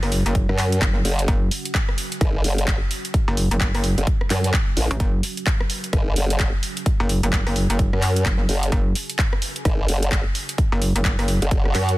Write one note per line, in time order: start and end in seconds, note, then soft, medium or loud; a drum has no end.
0.00 0.24 F#1 loud
0.00 11.98 C#4 medium
0.00 11.98 F#4 medium
0.00 4.99 F#5 loud
0.00 cross-stick medium
0.00 open hi-hat medium
0.12 open hi-hat loud
0.26 0.47 F#1 loud
0.26 closed hi-hat medium
0.35 kick loud
0.35 closed hi-hat medium
0.49 0.80 F#2 medium
0.49 cross-stick medium
0.58 clap medium
0.58 open hi-hat loud
0.72 closed hi-hat medium
0.82 1.03 F#1 loud
0.82 kick loud
0.82 clap loud
0.82 closed hi-hat medium
1.05 1.27 F#1 medium
1.05 open hi-hat loud
1.19 closed hi-hat medium
1.28 1.50 F#1 loud
1.28 kick loud
1.28 closed hi-hat medium
1.51 open hi-hat loud
1.65 closed hi-hat medium
1.75 kick loud
1.75 clap loud
1.75 closed hi-hat medium
1.89 cross-stick medium
1.98 open hi-hat loud
2.12 closed hi-hat medium
2.21 2.43 G#1 loud
2.21 kick loud
2.21 cross-stick medium
2.21 closed hi-hat medium
2.44 2.79 F#1 loud
2.44 open hi-hat loud
2.58 closed hi-hat medium
2.68 kick loud
2.68 clap loud
2.68 closed hi-hat medium
2.91 open hi-hat loud
3.05 closed hi-hat medium
3.14 kick loud
3.14 closed hi-hat medium
3.28 3.49 F#1 loud
3.37 open hi-hat loud
3.51 3.72 F#1 loud
3.51 closed hi-hat medium
3.60 kick loud
3.60 clap loud
3.60 closed hi-hat medium
3.75 3.96 F#1 loud
3.75 cross-stick medium
3.75 open hi-hat medium
3.84 open hi-hat loud
3.98 4.06 F#1 loud
3.98 closed hi-hat medium
4.07 kick loud
4.07 closed hi-hat soft
4.21 cross-stick medium
4.30 4.52 F#2 loud
4.30 clap medium
4.30 open hi-hat loud
4.44 closed hi-hat medium
4.54 kick loud
4.54 clap loud
4.54 closed hi-hat soft
4.77 4.89 A1 loud
4.77 open hi-hat loud
4.91 4.99 A1 medium
4.91 closed hi-hat medium
5.00 5.22 F#1 loud
5.00 11.98 G#5 loud
5.00 kick loud
5.00 closed hi-hat medium
5.23 open hi-hat loud
5.37 closed hi-hat medium
5.46 kick loud
5.46 clap loud
5.46 closed hi-hat medium
5.61 cross-stick medium
5.70 open hi-hat loud
5.84 closed hi-hat medium
5.93 6.15 G#1 loud
5.93 kick loud
5.93 cross-stick medium
5.93 closed hi-hat medium
6.16 6.51 F#1 medium
6.16 open hi-hat loud
6.30 closed hi-hat medium
6.40 kick loud
6.40 clap loud
6.40 closed hi-hat medium
6.63 open hi-hat loud
6.77 closed hi-hat medium
6.86 kick loud
6.86 closed hi-hat medium
7.00 7.21 F#1 loud
7.09 open hi-hat loud
7.23 7.44 F#1 loud
7.23 closed hi-hat medium
7.33 kick loud
7.33 clap loud
7.33 closed hi-hat medium
7.47 7.68 F#1 loud
7.47 cross-stick medium
7.47 open hi-hat medium
7.56 open hi-hat loud
7.70 7.91 F#1 medium
7.70 closed hi-hat medium
7.79 kick loud
7.79 closed hi-hat medium
7.93 8.24 F#2 loud
7.93 cross-stick medium
8.02 clap medium
8.02 open hi-hat loud
8.16 closed hi-hat medium
8.26 8.47 F#1 loud
8.26 kick loud
8.26 clap loud
8.26 closed hi-hat medium
8.49 8.71 F#1 medium
8.49 open hi-hat loud
8.63 closed hi-hat medium
8.72 8.94 F#1 loud
8.72 kick loud
8.72 closed hi-hat medium
8.95 open hi-hat loud
9.10 closed hi-hat medium
9.19 kick loud
9.19 clap loud
9.19 closed hi-hat medium
9.33 cross-stick medium
9.42 open hi-hat loud
9.56 closed hi-hat medium
9.65 9.87 G#1 loud
9.65 kick loud
9.65 cross-stick medium
9.65 closed hi-hat medium
9.88 10.24 F#1 loud
9.88 open hi-hat loud
10.03 closed hi-hat medium
10.12 kick loud
10.12 clap loud
10.12 closed hi-hat medium
10.35 open hi-hat loud
10.49 closed hi-hat medium
10.58 kick loud
10.58 closed hi-hat medium
10.72 10.93 F#1 loud
10.82 open hi-hat loud
10.96 11.17 F#1 medium
10.96 closed hi-hat medium
11.05 kick loud
11.05 clap loud
11.05 closed hi-hat medium
11.19 11.40 F#1 loud
11.19 cross-stick medium
11.19 open hi-hat medium
11.28 open hi-hat loud
11.42 11.73 F#1 loud
11.42 closed hi-hat medium
11.51 kick loud
11.51 closed hi-hat medium
11.51 swell medium
11.65 cross-stick medium
11.75 11.96 F#2 loud
11.75 clap medium
11.75 open hi-hat loud
11.89 closed hi-hat medium